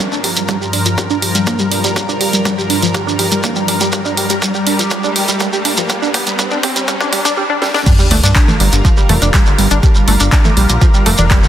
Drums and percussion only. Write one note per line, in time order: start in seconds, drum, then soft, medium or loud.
0.12 shekere soft
0.24 open hi-hat loud
0.36 closed hi-hat soft
0.36 shekere medium
0.48 kick loud
0.48 closed hi-hat soft
0.48 shekere medium
0.62 shekere soft
0.73 open hi-hat medium
0.85 closed hi-hat soft
0.85 shekere medium
0.98 kick loud
0.98 closed hi-hat soft
0.98 shekere medium
1.10 shekere soft
1.22 open hi-hat loud
1.35 closed hi-hat soft
1.35 shekere medium
1.47 kick loud
1.47 closed hi-hat soft
1.47 shekere medium
1.59 shekere soft
1.72 open hi-hat medium
1.84 closed hi-hat soft
1.84 shekere medium
1.96 kick loud
1.96 closed hi-hat soft
1.96 shekere medium
2.09 shekere soft
2.21 open hi-hat loud
2.33 closed hi-hat soft
2.33 shekere medium
2.45 kick loud
2.45 closed hi-hat soft
2.45 shekere medium
2.59 shekere soft
2.70 open hi-hat medium
2.82 closed hi-hat soft
2.82 shekere medium
2.94 kick loud
2.94 closed hi-hat soft
2.94 shekere medium
3.08 shekere soft
3.19 open hi-hat loud
3.31 closed hi-hat soft
3.31 shekere medium
3.43 kick loud
3.43 closed hi-hat soft
3.43 shekere medium
3.55 shekere soft
3.68 open hi-hat medium
3.80 closed hi-hat soft
3.80 shekere medium
3.92 kick loud
3.92 closed hi-hat soft
3.92 shekere medium
4.05 shekere soft
4.17 open hi-hat loud
4.29 closed hi-hat soft
4.29 shekere medium
4.42 kick loud
4.42 closed hi-hat soft
4.42 shekere medium
4.54 shekere soft
4.67 open hi-hat medium
4.79 closed hi-hat soft
4.79 shekere medium
4.90 kick loud
4.90 closed hi-hat soft
4.90 shekere medium
5.04 shekere soft
5.16 open hi-hat loud
5.28 closed hi-hat soft
5.28 shekere medium
5.40 kick loud
5.40 closed hi-hat soft
5.40 shekere medium
5.53 shekere soft
5.65 open hi-hat medium
5.77 closed hi-hat soft
5.77 shekere medium
5.89 kick loud
5.89 closed hi-hat soft
5.89 shekere medium
6.03 shekere soft
6.14 kick loud
6.14 open hi-hat loud
6.26 closed hi-hat soft
6.26 shekere medium
6.39 kick loud
6.39 closed hi-hat soft
6.39 shekere medium
6.51 shekere soft
6.63 kick loud
6.63 open hi-hat medium
6.76 closed hi-hat soft
6.76 shekere medium
6.88 kick loud
6.88 closed hi-hat soft
6.88 shekere medium
7.01 kick medium
7.01 shekere soft
7.13 kick loud
7.13 open hi-hat loud
7.25 kick loud
7.25 closed hi-hat soft
7.25 shekere medium
7.62 snare medium
7.74 snare medium
7.86 kick loud
7.86 closed hi-hat soft
7.86 crash loud
7.86 shekere medium
7.99 shekere soft
8.11 open hi-hat loud
8.23 closed hi-hat soft
8.23 shekere medium
8.36 kick loud
8.36 clap loud
8.36 closed hi-hat soft
8.36 shekere medium
8.48 low conga medium
8.48 shekere soft
8.60 open hi-hat medium
8.72 closed hi-hat soft
8.72 shekere medium
8.85 kick loud
8.85 closed hi-hat soft
8.85 shekere medium
8.97 shekere soft
9.09 open hi-hat loud
9.09 low conga medium
9.22 closed hi-hat soft
9.22 shekere medium
9.34 kick loud
9.34 clap loud
9.34 closed hi-hat soft
9.34 shekere medium
9.46 shekere soft
9.59 open hi-hat medium
9.71 closed hi-hat soft
9.71 shekere medium
9.83 kick loud
9.83 closed hi-hat soft
9.83 shekere medium
9.95 shekere soft
10.08 open hi-hat loud
10.20 closed hi-hat soft
10.20 shekere medium
10.32 kick loud
10.32 clap loud
10.32 closed hi-hat soft
10.32 shekere medium
10.45 low conga medium
10.45 shekere soft
10.57 open hi-hat medium
10.69 closed hi-hat soft
10.69 shekere medium
10.81 kick loud
10.81 closed hi-hat soft
10.81 shekere medium
10.94 shekere soft
11.06 open hi-hat loud
11.18 closed hi-hat soft
11.18 low conga medium
11.18 shekere medium
11.31 kick loud
11.31 clap loud
11.31 closed hi-hat soft
11.31 shekere medium
11.43 shekere soft